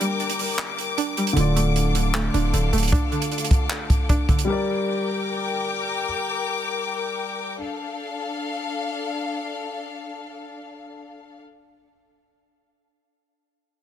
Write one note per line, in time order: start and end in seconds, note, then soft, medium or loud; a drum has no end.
0.00 1.31 G3 medium
0.00 1.16 G3 medium
0.00 0.78 A#3 medium
0.00 0.97 D4 loud
0.00 1.32 G4 medium
0.00 1.33 A#4 medium
0.00 1.34 A#4 medium
0.00 1.35 D5 medium
0.00 1.34 G5 medium
0.00 4.44 D6 medium
0.00 closed hi-hat medium
0.20 closed hi-hat soft
0.30 closed hi-hat medium
0.39 open hi-hat medium
0.58 clap loud
0.58 closed hi-hat medium
0.78 closed hi-hat medium
0.98 1.37 D4 medium
0.98 closed hi-hat medium
1.17 1.37 G3 medium
1.17 closed hi-hat medium
1.27 closed hi-hat medium
1.33 2.30 D1 loud
1.33 4.43 D3 medium
1.33 1.94 D3 medium
1.33 4.44 A3 medium
1.33 4.45 A4 medium
1.33 4.45 F5 medium
1.33 closed hi-hat medium
1.38 4.45 F4 medium
1.38 4.46 D5 medium
1.56 2.14 A3 medium
1.56 closed hi-hat medium
1.76 closed hi-hat medium
1.95 2.52 D3 medium
1.95 closed hi-hat medium
2.14 2.72 A3 loud
2.14 clap loud
2.14 closed hi-hat medium
2.34 2.53 D1 loud
2.34 2.91 D4 medium
2.34 closed hi-hat medium
2.54 2.72 D1 loud
2.54 3.11 D3 medium
2.54 closed hi-hat medium
2.73 2.92 D1 loud
2.73 3.90 A3 medium
2.73 closed hi-hat medium
2.78 closed hi-hat medium
2.83 closed hi-hat medium
2.88 closed hi-hat medium
2.92 4.08 D4 loud
2.92 kick loud
2.92 closed hi-hat medium
3.12 4.28 D3 medium
3.12 closed hi-hat soft
3.22 closed hi-hat medium
3.31 closed hi-hat soft
3.38 closed hi-hat medium
3.44 closed hi-hat medium
3.51 kick medium
3.51 closed hi-hat medium
3.70 clap loud
3.70 closed hi-hat medium
3.90 kick loud
3.90 closed hi-hat medium
4.09 4.48 D4 medium
4.09 kick medium
4.09 closed hi-hat medium
4.29 4.48 D3 medium
4.29 kick medium
4.29 closed hi-hat medium
4.29 open hi-hat medium
4.39 closed hi-hat medium
4.45 7.54 G3 medium
4.45 7.56 G4 medium
4.45 7.57 A#4 medium
4.45 7.57 G5 medium
4.45 7.57 D6 medium
4.50 7.57 A#4 medium
4.50 7.58 D5 medium
7.60 11.40 D4 medium
7.60 11.40 A4 medium
7.60 11.40 F5 medium